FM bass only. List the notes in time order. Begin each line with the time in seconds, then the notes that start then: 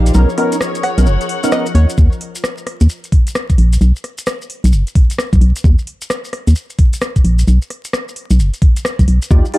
Already playing: A#1
0.15 B1
0.98 B1
1.06 F#1
1.75 D#2
1.98 D#2
2.81 D#2
3.58 A#1
3.81 B1
4.64 B1
4.73 F#1
5.33 B1
5.41 B1
5.64 D#2
6.47 D#2
7.24 A#1
7.48 B1
8.31 B1
8.39 F#1
8.99 B1
9.08 B1
9.31 D#2